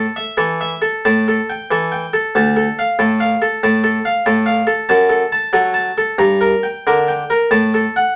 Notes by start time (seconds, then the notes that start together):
Already playing: A4
0.16 E5
0.37 E3 A4
0.61 E5
0.82 A4
1.05 A2 A5
1.28 A4
1.50 G5
1.71 E3 A4
1.92 G5
2.13 A4
2.35 D2 A5
2.56 A4
2.79 F5
2.99 A2 A4
3.20 F5
3.42 A4
3.63 A2 A5
3.84 A4
4.05 F5
4.26 A2 A4
4.46 F5
4.67 A4
4.89 F#2 A5
5.10 A4
5.32 A5
5.53 F#3 A4
5.74 A5
5.98 A4
6.18 G2 A#5
6.41 A#4
6.63 G5
6.87 D3 A#4
7.08 G5
7.30 A#4
7.51 A2 A5
7.74 A4
7.96 F#5